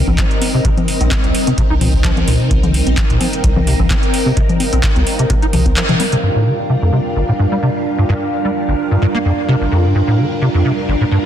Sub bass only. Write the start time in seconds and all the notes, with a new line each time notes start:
0.08 C2
1.01 A#1
1.24 C2
1.70 C2
2.27 C2
2.51 C2
2.87 A#1
3.10 C2
3.44 C2
3.80 C2
4.73 A#1
4.96 C2
5.53 C2